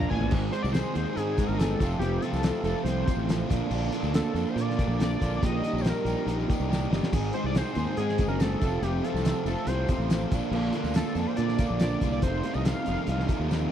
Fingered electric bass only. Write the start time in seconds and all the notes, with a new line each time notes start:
0.12 A1
0.32 G#1
0.64 C2
0.96 D#2
1.17 G#2
1.49 G1
1.81 F1
1.99 F1
2.33 C2
2.63 F1
2.84 C2
3.17 A1
3.51 A#1
3.70 A#1
4.03 D2
4.34 F2
4.56 A#2
4.88 A#1
5.22 A#1
5.42 A#1
5.73 A#1
6.05 A#1
6.26 A#1
6.60 C2
6.91 G1
7.12 G#1
7.44 C2
7.76 D#2
7.97 G#2
8.28 F#1
8.62 F1
8.82 F1
9.14 C2
9.45 F1
9.67 C2
9.98 A1
10.32 A#1
10.51 A#1
10.84 D2
11.15 F2
11.38 A#2
11.70 A#1
12.01 C2
12.23 F1
12.55 C2
12.88 F1
13.08 C2
13.40 D#2